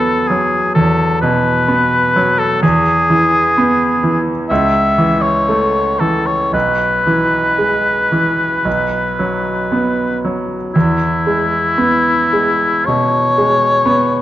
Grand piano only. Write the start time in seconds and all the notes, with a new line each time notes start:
Already playing: E2 F#3 B3
0.30 F#3
0.76 E2
1.23 B2
1.68 B3
2.16 F#3
2.63 E2
3.10 E3
3.58 B3
4.03 E3
4.50 C#2
4.98 E3
5.49 A3
6.00 E3
6.53 B1
7.07 E3
7.58 G#3
8.12 E3
8.65 B1
9.19 F#3
9.72 B3
10.25 F#3
10.76 E2
11.27 G#3
11.78 B3
12.33 G#3
12.88 B2
13.38 G#3
13.86 B3